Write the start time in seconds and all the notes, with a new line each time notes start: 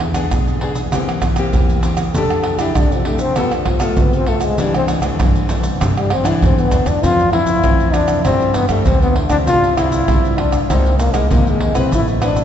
Already playing: E2 E3
0.00 pandeiro, tamborim
0.14 B3 D4 G#4, pandeiro, tamborim, shaker
0.31 B1 B2, pandeiro, tamborim, shaker, surdo
0.48 pandeiro, shaker
0.61 B3 D4 G#4, pandeiro
0.75 pandeiro, shaker
0.92 E2 E3 A#3 C4 G4, pandeiro, tamborim, shaker, surdo
1.09 pandeiro, tamborim, shaker
1.22 pandeiro, tamborim, shaker, surdo
1.36 A#3 C4 G4, pandeiro, tamborim, shaker
1.53 E2 E3, pandeiro, shaker, surdo
1.69 pandeiro, shaker
1.83 A#3 C4 G4, pandeiro, shaker
1.97 pandeiro, tamborim, shaker
2.15 F2 F3 A3 D4 G4 A4, pandeiro, shaker, surdo
2.30 pandeiro, tamborim, shaker
2.44 pandeiro, tamborim
2.59 A3 D4 E4 G4, pandeiro, tamborim, shaker
2.75 C2 C3 D4, pandeiro, tamborim, shaker, surdo
2.92 F3, pandeiro, shaker
3.05 A3 D4 G4, pandeiro
3.19 C4, pandeiro, shaker
3.36 G2 G3 B3 F4 A4, pandeiro, tamborim, shaker, surdo
3.52 D3, pandeiro, tamborim, shaker
3.65 F3, pandeiro, tamborim, surdo
3.80 A3 B3 F4 A4, pandeiro, tamborim, shaker
3.97 C#2 B3, pandeiro, shaker, surdo
4.13 C4, pandeiro, shaker
4.26 A3 B3 F4 A4, pandeiro
4.41 G#3, pandeiro, tamborim, shaker
4.58 C2 C3 E3 G3 A3 D4, pandeiro, shaker, surdo
4.74 C4, pandeiro, tamborim, shaker
4.88 pandeiro, tamborim, shaker
5.02 E3 A3 D4, pandeiro, tamborim, shaker
5.20 G2, pandeiro, tamborim, shaker, surdo
5.36 pandeiro, shaker
5.49 E3 A3 D4, pandeiro, shaker
5.63 pandeiro, shaker
5.80 G2 C3 E3 A3 D4, pandeiro, tamborim, shaker, surdo
5.97 G3, pandeiro, tamborim, shaker
6.10 C4, pandeiro, tamborim
6.24 E3 A3 D4 E4, pandeiro, tamborim, shaker
6.41 E2 G2 C4, pandeiro, shaker, surdo
6.58 B3, pandeiro, shaker
6.71 D2 E3 A3 D4, pandeiro, shaker
6.86 E2 D4, pandeiro, tamborim, shaker
7.02 F2 E3 A3 C4 F4, pandeiro, shaker, surdo
7.19 pandeiro, shaker
7.32 E3 A3 C4 E4, pandeiro, tamborim, surdo
7.46 pandeiro, shaker
7.64 F2 C3 E3 A3 C4, pandeiro, tamborim, shaker, surdo
7.80 pandeiro, shaker
7.93 D4, pandeiro, tamborim, shaker
8.08 F2, pandeiro, tamborim, shaker, surdo
8.24 G2 G3 A3 C4 D4, pandeiro, tamborim, shaker, surdo
8.41 pandeiro, shaker
8.54 B3, pandeiro, shaker, surdo
8.69 G2 G3 A3 D4, pandeiro, tamborim, shaker, surdo
8.85 D2 D3 G3 A3 C4 D4, pandeiro, shaker, surdo
9.01 B3, pandeiro, shaker
9.16 pandeiro
9.30 D2 G3 C4 D4 E4, pandeiro, tamborim, shaker, surdo
9.47 C2 C3 F4, pandeiro, shaker, surdo
9.64 pandeiro, shaker
9.77 G3 C4 E4, pandeiro, tamborim, shaker, surdo
9.92 pandeiro, shaker
10.08 C2 G2 G3 C4 E4, pandeiro, tamborim, shaker, surdo
10.25 pandeiro, shaker
10.38 D4, pandeiro, tamborim
10.52 C2, pandeiro, tamborim, shaker, surdo
10.63 D4
10.69 C2 C3 G#3 A#3 C4 D#4, pandeiro, tamborim, shaker, surdo
10.86 pandeiro, shaker
10.99 A#3, pandeiro, shaker
11.13 C2 G#3 A#3 D#4, pandeiro, tamborim, shaker, surdo
11.30 D#2 C3 G#3 A#3 D#4, pandeiro, shaker, surdo
11.47 G#3, pandeiro, shaker
11.61 pandeiro
11.74 A#1 C4 E4 B4, pandeiro, tamborim, shaker, surdo
11.91 A1 A3 E4, pandeiro, shaker, surdo
12.08 pandeiro, shaker
12.21 C4 D4 E4 B4, pandeiro, tamborim, shaker, surdo
12.36 pandeiro, shaker